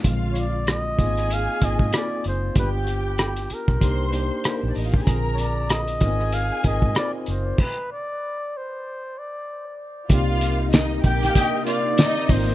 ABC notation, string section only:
X:1
M:4/4
L:1/16
Q:"Swing 16ths" 1/4=95
K:Cm
V:1 name="String section"
[Ff]4 z2 [Aa]8 z2 | [Gg]6 z2 [cc']4 z/2 [B,B]/2 [Cc]/2 [Dd]/2 [Ee]/2 [Ff]/2 [Gg]/2 [Aa]/2 | [Bb]4 z2 [Aa]8 z2 | z16 |
[Ff]4 [Ee]2 [Gg]4 [Ff]2 [Ee]3 z |]